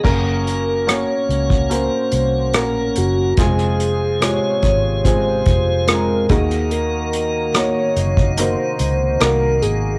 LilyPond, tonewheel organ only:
<<
  \new Staff \with { instrumentName = "Tonewheel organ" } { \time 4/4 \key ges \lydian \tempo 4 = 72 <des' ges'>1 | <c f'>2.~ <c f'>8 <ees ges'>8~ | <ees ges'>1 | }
  \new Staff \with { instrumentName = "Tonewheel organ" } { \time 4/4 \key ges \lydian bes1 | aes2.~ aes8 bes8~ | bes4. c2~ c8 | }
>>